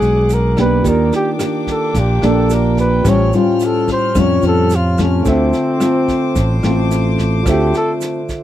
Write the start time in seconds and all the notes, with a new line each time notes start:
Already playing: B2 G#3 D4 F#4 G#4 B4 D5 F#5 D6
0.01 B1, snare, shaker
0.29 A#4, snare, shaker
0.57 A#3 D4 G4 B4, kick, cross-stick, snare, shaker
0.82 D#2 D#3 D4 F4 G4 G5 D6, kick, snare, shaker
0.87 A#4 D5
1.12 G4, snare, shaker
1.39 A#3 D4 G4, cross-stick, snare, shaker
1.67 A4, kick, snare, shaker
1.94 A#1 A#2, kick, snare, shaker
1.99 G4
2.22 A#1 A#3 D4 G4 A4, cross-stick, snare, shaker
2.49 F4 G4 A#4 D5, snare, shaker
2.53 A#4
2.77 B4, kick, snare, shaker
3.02 A1 A2 G3 C#4 F4 G4 F6, kick, cross-stick, snare, shaker
3.06 C5 C#5
3.33 G3 C#4 F4, snare, shaker
3.60 snare, shaker
3.65 A4
3.88 C5, kick, snare, shaker
4.15 F2 A2 G3 C#4 F4, kick, cross-stick, snare, shaker
4.20 C#5
4.42 F2 F4 G4 C5 C#5, snare, shaker
4.47 A4
4.70 snare, shaker
4.75 F4
4.97 A3 C4 F4, kick, cross-stick, snare, shaker
5.03 C#4
5.23 D2 D3 F4 A4 C5 D6, kick, snare, shaker
5.27 C4 C5 E5
5.53 snare, shaker
5.80 A3 C4 F4, cross-stick, snare, shaker
6.08 kick, snare, shaker
6.35 A1 A2, kick, snare, shaker
6.63 A1 A3 C4 F4, cross-stick, snare, shaker
6.91 snare, shaker
7.18 kick, snare, shaker
7.43 D2 D3 A3 C4 F4 A4, kick, cross-stick, snare, shaker
7.48 G4 C5 E5
7.74 A4, snare, shaker
8.01 snare, shaker
8.29 kick, snare, shaker